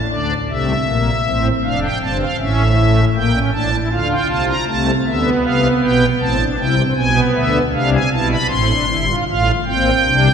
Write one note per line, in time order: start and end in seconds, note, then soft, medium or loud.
0.10 0.33 D2 medium
0.10 0.34 D3 medium
0.10 0.33 D4 medium
0.10 0.34 D5 medium
0.49 0.72 C2 medium
0.49 0.72 C3 medium
0.49 0.72 A3 medium
0.49 1.47 E5 medium
0.86 1.10 A#1 medium
0.86 1.10 A#2 medium
0.86 1.10 A#3 medium
1.25 1.49 A1 medium
1.25 1.49 A2 medium
1.25 1.49 C4 medium
1.63 1.87 F1 medium
1.63 1.87 F2 medium
1.63 1.87 D4 loud
1.63 1.79 F5 medium
1.82 1.98 G5 medium
2.01 2.24 G1 medium
2.01 2.24 G2 medium
2.01 2.24 C4 medium
2.01 2.17 A5 medium
2.21 2.37 F5 medium
2.39 3.05 A1 medium
2.39 3.05 A2 medium
2.39 2.63 C#4 medium
2.39 3.05 E5 medium
2.76 3.00 A3 medium
3.15 3.39 A#1 medium
3.15 3.38 A#2 medium
3.15 3.31 A#3 medium
3.15 3.39 G5 medium
3.33 3.50 C#4 medium
3.53 3.76 A1 medium
3.53 3.76 A2 medium
3.53 3.69 D4 medium
3.53 3.76 A5 medium
3.71 3.88 E4 medium
3.91 4.15 D2 medium
3.91 4.15 D3 medium
3.91 4.57 F4 medium
3.91 4.08 F5 medium
4.11 4.27 G5 medium
4.29 4.53 C2 medium
4.29 4.52 C3 medium
4.29 4.45 A5 medium
4.48 4.64 A#5 medium
4.67 4.91 C2 medium
4.67 4.91 C3 medium
4.67 4.91 A3 medium
4.67 4.91 A5 medium
5.06 5.30 D2 medium
5.06 5.29 D3 medium
5.06 6.04 B3 medium
5.06 5.30 E5 medium
5.44 5.67 C2 medium
5.44 5.67 C3 medium
5.44 5.67 F5 loud
5.82 6.06 B1 medium
5.82 6.05 B2 medium
5.82 6.06 G5 medium
6.20 6.44 A1 medium
6.20 6.44 A2 medium
6.20 6.36 C4 medium
6.20 6.44 A5 loud
6.39 6.56 D4 medium
6.58 6.82 C2 medium
6.58 6.82 C3 medium
6.58 6.75 E4 medium
6.58 6.82 G5 medium
6.77 6.94 C4 medium
6.96 7.20 B1 medium
6.96 7.20 B2 medium
6.96 7.62 B3 medium
6.96 7.20 G#5 loud
7.35 7.58 D2 medium
7.35 7.59 D3 medium
7.35 7.59 E5 loud
7.73 7.97 C2 medium
7.73 7.97 C3 medium
7.73 7.97 D4 medium
7.73 7.90 F5 medium
7.93 8.09 G#5 loud
8.11 8.35 B1 medium
8.11 8.35 B2 medium
8.11 8.36 E4 medium
8.11 8.28 A5 medium
8.30 8.47 B5 medium
8.49 8.73 A1 medium
8.49 8.73 A2 medium
8.49 8.66 C4 medium
8.49 9.16 C6 loud
8.68 8.85 D4 medium
8.88 9.12 G1 medium
8.88 9.12 G2 medium
8.88 9.05 E4 medium
9.07 9.24 F4 medium
9.27 9.51 A1 medium
9.27 9.51 A2 medium
9.27 9.51 F4 medium
9.27 9.51 F5 medium
9.65 9.90 A#1 medium
9.65 9.90 A#2 medium
9.65 9.90 C4 loud
9.65 10.34 G5 medium
10.04 10.28 C2 medium
10.04 10.28 C3 medium
10.04 10.28 D4 medium